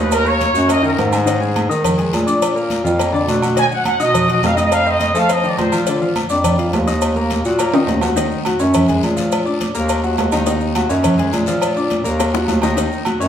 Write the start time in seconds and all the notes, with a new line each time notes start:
Already playing: D#2 D#4 D#5 D#6
0.00 B4
0.11 A#4, cowbell, high conga, low agogo, long guiro, maracas
0.25 A#3 A#4 C#5 A#5, high conga, maracas
0.40 cowbell, high conga, low agogo, short guiro, maracas
0.54 F#2 F#3 F#4 F#5, short guiro, maracas
0.67 A#3 A#4 D#5 A#5, cowbell, high conga, low agogo, long guiro, maracas
0.82 D#3 D#4 A#4 D#5, high conga, maracas
0.98 G#2, cowbell, high conga, low timbale, low agogo, short guiro, maracas
1.12 G#3 G#4 G#5, low agogo, short guiro, maracas
1.25 D#3 D#4 D#5, cowbell, high conga, low agogo, long guiro, maracas
1.40 G#3 G#4 G#5, high conga, maracas
1.56 cowbell, high conga, low agogo, short guiro, maracas
1.69 D#3 D#4 D#5 D#6, high conga, short guiro, maracas
1.84 cowbell, high conga, low conga, low agogo, long guiro, maracas
1.97 G#3 G#4 G#5, cowbell, high conga, low conga, maracas
2.13 A#2, cowbell, high conga, low agogo, short guiro, maracas
2.26 D4 D5 D6, cowbell, short guiro, maracas
2.42 cowbell, high conga, low agogo, long guiro, maracas
2.55 A#3 A#4 A#5, high conga, maracas
2.70 cowbell, high conga, low agogo, short guiro, maracas
2.84 F2 F3 F4 F5, short guiro, maracas
2.99 A#3 A#4 A#5, cowbell, high conga, low agogo, long guiro, maracas
3.12 D3 D4 D5, high conga, maracas
3.27 B2, cowbell, high conga, low agogo, short guiro, maracas
3.41 F#3 F#4 F#5, high conga, low agogo, short guiro, maracas
3.56 D#3 D#4 D#5 G#5, cowbell, high conga, low agogo, long guiro, maracas
3.71 F#3 F#4 F#5, high conga, maracas
3.85 F#5, cowbell, high conga, low agogo, short guiro, maracas
4.00 B2 D#4 D#5 D#6, high conga, short guiro, maracas
4.14 cowbell, high conga, low conga, low agogo, long guiro, maracas
4.28 F#3 F#4 D#5 F#5, cowbell, high conga, maracas
4.43 F2 F5, cowbell, high conga, low timbale, low agogo, short guiro, maracas
4.55 D#4 D#5 D#6, cowbell, high conga, short guiro, maracas
4.63 D#5
4.72 F5, cowbell, low agogo, long guiro, maracas
4.86 C4 C5 D#5 C6, high conga, maracas
5.00 cowbell, high conga, low agogo, short guiro, maracas
5.15 F3 A3 A4 F5 A5, short guiro, maracas
5.29 C4 C5 D#5 C6, cowbell, high conga, low agogo, long guiro, maracas
5.43 D#3 D#4 D5 D#5, high conga, maracas
5.58 A#2 C5, cowbell, high conga, low timbale, low agogo, short guiro, maracas
5.72 F3 F4 F5, low agogo, short guiro, maracas
5.87 D3 D4 D5, cowbell, high conga, low agogo, maracas
6.01 F3 F4 F5, high conga, maracas
6.16 cowbell, high conga, low agogo, short guiro, maracas
6.29 F2 D4 D5 D6, high conga, short guiro, maracas
6.44 cowbell, high conga, low conga, low agogo, long guiro, maracas
6.58 F3 F4 F5, cowbell, maracas
6.73 D#2, cowbell, high conga, low timbale, low agogo, short guiro, maracas
6.87 D#4 D#5 D#6, cowbell, short guiro, maracas
7.01 cowbell, high conga, low agogo, long guiro, maracas
7.16 A#3 A#4 A#5, high conga, maracas
7.30 cowbell, high conga, low agogo, short guiro, maracas
7.45 A#2 F#3 F#4 F#5, short guiro, maracas
7.59 A#3 A#4 A#5, cowbell, high conga, low agogo, long guiro, maracas
7.74 D#3 D#4 D#5, high conga, high timbale, maracas
7.87 D#2, cowbell, high conga, low timbale, low agogo, short guiro, maracas
8.01 F#3 F#4 F#5, high conga, low timbale, low agogo, short guiro, maracas
8.16 D#3 D#4 D#5, cowbell, high conga, low agogo, long guiro, maracas
8.31 high conga, maracas
8.45 F#3 F#4 F#5, cowbell, high conga, low agogo, short guiro, maracas
8.59 F#2 C#4 C#5 C#6, high conga, short guiro, maracas
8.74 cowbell, high conga, low conga, low agogo, long guiro, maracas
8.88 G#3 G#4 G#5, cowbell, high conga, low conga, maracas
9.03 A#2, cowbell, high conga, low agogo, short guiro, maracas
9.16 F3 F4 F5, cowbell, high conga, short guiro, maracas
9.32 cowbell, high conga, low agogo, long guiro, maracas
9.45 D4 D5 D6, high conga, maracas
9.61 cowbell, high conga, low agogo, short guiro, maracas
9.74 D#2 A#3 A#4 A#5, short guiro, maracas
9.89 cowbell, high conga, low agogo, maracas
10.03 F#3 F#4 F#5, high conga, maracas
10.18 D#2, cowbell, high conga, low timbale, low agogo, short guiro, maracas
10.32 D#3 D#4 D#5, low agogo, short guiro, maracas
10.46 D#3 D#4 D#5, cowbell, high conga, low agogo, long guiro, maracas
10.61 high conga, maracas
10.75 F#3 F#4 F#5, cowbell, high conga, low agogo, short guiro, maracas
10.89 F#2 C#4 C#5 C#6, high conga, short guiro, maracas
11.03 cowbell, high conga, low conga, low agogo, long guiro, maracas
11.18 G#3 G#4 G#5, cowbell, high conga, maracas
11.33 A#2, cowbell, high conga, low agogo, short guiro, maracas
11.46 F3 F4 F5, cowbell, short guiro, maracas
11.61 cowbell, high conga, low agogo, long guiro, maracas
11.76 D4 D5 D6, high conga, maracas
11.90 cowbell, high conga, low agogo, short guiro, maracas
12.04 D#2 A#3 A#4 A#5, short guiro, maracas
12.20 cowbell, high bongo, high conga, low agogo, long guiro, maracas
12.33 F#3 F#4 F#5, low bongo, high conga, maracas
12.48 D#2, cowbell, low bongo, high conga, low agogo, short guiro, maracas
12.62 D#3 D#4 D#5, low bongo, low agogo, short guiro, maracas
12.76 D#3 D#4 D#5, cowbell, high conga, low agogo, long guiro, maracas
12.92 high conga, maracas
13.05 F#3 F#4 F#5, cowbell, high conga, low agogo, short guiro, maracas
13.20 F#2 C#4 C#5 C#6, high conga, short guiro, maracas